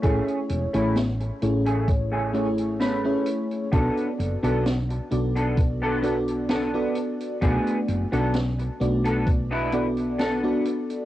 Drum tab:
HH |xxxxxxxxx-xxx-xx|xxxxxxxxx-xxx-xx|xxxxxxxxx-xxx-xx|
SD |----o-------o---|----o-------o---|----o-------o---|
BD |o-------o-------|o-------o-------|o-------o-------|